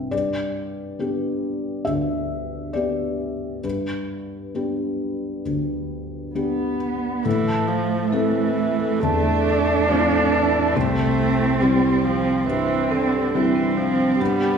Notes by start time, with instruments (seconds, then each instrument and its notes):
Already playing: felt piano G2 C4 E4 E5
0.11 felt piano G2 D5
0.99 felt piano B3 D4 G4
1.85 felt piano D2 E5
2.73 felt piano B3 D4 G4 D5
3.64 felt piano G2 B4
4.55 felt piano B3 D4 G4
5.45 felt piano D2
6.35 cello B3, felt piano B3 D4 G4
7.25 felt piano A2, viola E3, cello A3, marimba A4
7.47 marimba A5
7.68 viola F3, marimba C5
7.91 marimba C5
8.11 viola E3, felt piano A3 C4 E4, marimba A4
8.35 marimba C5
8.58 marimba E5
8.80 marimba A4
9.00 felt piano E2, viola A3, cello D4, marimba A5
9.24 marimba A5
9.45 marimba A4
9.67 marimba E5
9.88 viola F3, felt piano A3 C4 E4, marimba C5
10.10 marimba A4
10.32 viola E3, marimba A5
10.54 marimba A5
10.75 felt piano C2, viola A3, cello C4, marimba C4
10.97 marimba C5
11.18 marimba E4
11.40 marimba E4
11.60 viola G3, felt piano G3 C4 E4, marimba C4
11.82 marimba E4
12.04 viola F3, marimba G4
12.25 marimba C4
12.47 felt piano G2, viola E3, cello C4, marimba C5
12.69 marimba C5
12.91 viola D3, marimba C4
13.12 marimba G4
13.34 viola E3, felt piano G3 C4 E4, cello C4, marimba E4
13.55 marimba C4
13.77 viola F3, marimba C5
13.98 marimba C5
14.20 felt piano G2, viola G3, cello B3, marimba G4
14.41 marimba G5